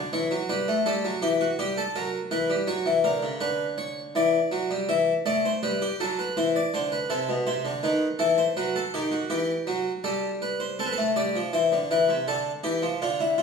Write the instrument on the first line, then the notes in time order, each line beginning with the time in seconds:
harpsichord
Already playing: D3
0.13 E3 C#5
0.31 F#3
0.49 G3 B4
0.68 A3
0.86 G3 A4
1.05 F#3
1.22 E3 G4
1.41 F#4
1.59 G3 G4
1.78 A4
1.96 F#3 A#4
2.31 E3 B4
2.50 G3
2.67 F#3 C#5
2.86 E3
3.04 D3 A#4
3.23 C#3
3.40 D3 B4
3.78 C#5
4.15 E3 D5
4.52 F#3
4.71 G3
4.89 E3 E5
5.26 A3 D5
5.45 C5
5.63 G3 B4
5.82 G4
6.00 F#3 A4
6.19 B4
6.37 E3 C5
6.56 D5
6.74 D3 C5
6.92 B4
7.10 C3 A4
7.29 B2
7.47 C3 C5
7.65 D3
7.83 D#3 B4
8.19 E3 A4
8.38 C5
8.57 F#3 B4
8.76 A4
8.94 D#3 G4
9.11 F#4
9.30 E3 G4
9.67 F#3
10.04 G3 A4
10.42 B4
10.60 C5
10.79 C4 A4
10.86 B4
10.93 A4
10.98 A3
11.16 G3 D5
11.36 F3
11.53 E3 C5
11.72 D3
11.91 E3 B4
12.09 C3
12.28 D3 A4
12.64 E3 G4
12.82 F3
13.02 D3 F4
13.20 E4
13.38 F4